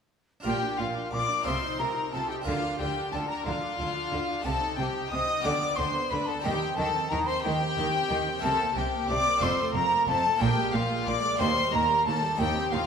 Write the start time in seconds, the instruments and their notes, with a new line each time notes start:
0.40 harpsichord D4 F4 A#4
0.45 double bass section A#1, harpsichord A#2, cello section A#2, viola section F4, violin section G4 G5, flute G5
0.62 viola section D4
0.79 double bass section A#1, harpsichord A#2, cello section A#2, violin section F4 F5, viola section F4, flute F5
0.96 viola section D4
1.11 double bass section A#1, harpsichord A#2, cello section A#2, viola section F4, violin section D5 D6, flute D6
1.30 viola section D4
1.41 harpsichord D#4 F4 A4, violin section C5
1.45 double bass section C2, harpsichord C3, cello section C3, viola section F4, flute C6, violin section C6
1.64 viola section D#4
1.78 double bass section C2, harpsichord C3, cello section C3, viola section F4, violin section A#4 A#5, flute A#5
1.97 viola section D#4
2.12 double bass section C2, harpsichord C3, cello section C3, viola section F4, violin section A4 A5, flute A5
2.29 viola section D#4, violin section G4 G5, flute G5
2.41 harpsichord D4 F4 A#4, violin section F5, flute F5
2.46 double bass section D2, harpsichord D3, cello section D3, violin section F4, viola section F4
2.63 viola section D4
2.78 double bass section D2, harpsichord D3, cello section D3, viola section F4, violin section G4 G5, flute G5
2.97 viola section D4
3.11 double bass section D2, harpsichord D3, cello section D3, viola section F4, violin section A4 A5, flute A5
3.28 viola section D4, violin section A#4 A#5, flute A#5
3.44 double bass section D2, cello section D3, harpsichord D3, viola section F4, violin section F4 F5, flute F5
3.62 viola section D4
3.79 double bass section D2, harpsichord D3, cello section D3, viola section F4
3.95 viola section D4
4.12 double bass section D2, cello section D3, harpsichord D3, viola section F4
4.29 viola section D4
4.42 double bass section C2, cello section C3, harpsichord D#4 G4, violin section A4 A5, flute A5
4.46 harpsichord C3, viola section C4
4.62 viola section D#4
4.77 double bass section C2, cello section C3, harpsichord C3, viola section C4, violin section G4 G5, flute G5
4.95 viola section D#4
5.09 double bass section C2, harpsichord C3, cello section C3, viola section C4, violin section D#5 D#6, flute D#6
5.28 viola section D#4
5.40 harpsichord B3 F4 G4, violin section D6, flute D6
5.45 double bass section D2, harpsichord D3, cello section D3, viola section D4, violin section D5
5.62 viola section B3
5.76 double bass section D2, harpsichord D3, cello section D3, viola section D4, violin section C5 C6, flute C6
5.95 viola section B3
6.10 double bass section D2, harpsichord D3, cello section D3, viola section D4, violin section B4 B5, flute B5
6.26 viola section B3, violin section A4 A5, flute A5
6.40 harpsichord C4 D#4 G4, violin section G4 G5, flute G5
6.44 double bass section D#2, harpsichord D#3, cello section D#3, viola section D#4
6.62 viola section C4
6.76 double bass section D#2, harpsichord D#3, cello section D#3, viola section D#4, violin section A4 A5, flute A5
6.95 viola section C4
7.08 double bass section D#2, harpsichord D#3, cello section D#3, violin section A#4 A#5, flute A#5
7.13 viola section D#4
7.26 viola section C4, violin section C5 C6, flute C6
7.41 double bass section D#2, harpsichord D#3, cello section D#3, violin section G4 G5, flute G5
7.46 viola section D#4
7.62 viola section C4
7.77 double bass section D#2, harpsichord D#3, cello section D#3, viola section D#4
7.95 viola section C4
8.08 double bass section D#2, harpsichord D#3, cello section D#3, viola section D#4
8.27 viola section C4
8.38 harpsichord C4 E4 A#4
8.42 double bass section C2, harpsichord C3, cello section C3, viola section C4, violin section A4 A5, flute A5
8.61 viola section A#3
8.75 double bass section C2, harpsichord C3, cello section C3, viola section C4, violin section G4 G5, flute G5
8.94 viola section A#3
9.08 double bass section C2, harpsichord C3, cello section C3, viola section C4, violin section D5 D6, flute D6
9.28 viola section A#3
9.37 harpsichord C4 F4 A4
9.41 double bass section F1, harpsichord F2, cello section F2, viola section C4, violin section C5 C6, flute C6
9.61 viola section A3
9.74 double bass section F1, harpsichord F2, cello section F2, viola section C4, violin section A#4 A#5, flute A#5
9.92 viola section A3
10.07 double bass section F1, harpsichord F2, cello section F2, viola section C4, violin section A4 A5, flute A5
10.25 viola section A3
10.36 harpsichord A#3 D4 G#4
10.40 double bass section A#1, harpsichord A#2, cello section A#2, viola section A#3, violin section G4 G5, flute G5
10.57 viola section G#3
10.72 double bass section A#1, harpsichord A#2, cello section A#2, viola section A#3, violin section F4 F5, flute F5
10.91 viola section G#3
11.06 double bass section A#1, harpsichord A#2, cello section A#2, viola section A#3, violin section D5 D6, flute D6
11.23 viola section G#3
11.35 harpsichord A#3 D#4 G4, violin section C6
11.40 harpsichord D#2, double bass section D#2, cello section D#2, viola section A#3, violin section C5, flute C6
11.57 viola section G3
11.72 cello section D#2, double bass section D#2, harpsichord D#2, viola section A#3, violin section A#4 A#5, flute A#5
11.90 viola section G3
12.05 double bass section D#2, cello section D#2, harpsichord D#2, viola section A#3, violin section A4 A5, flute A5
12.23 viola section G3
12.35 harpsichord C4 D#4 G4
12.39 harpsichord D#2, double bass section D#2, cello section D#2, viola section D#4, violin section G4 G5, flute G5
12.57 viola section C4
12.71 cello section D#2, double bass section D#2, harpsichord D#2, viola section D#4, violin section F4 F5, flute F5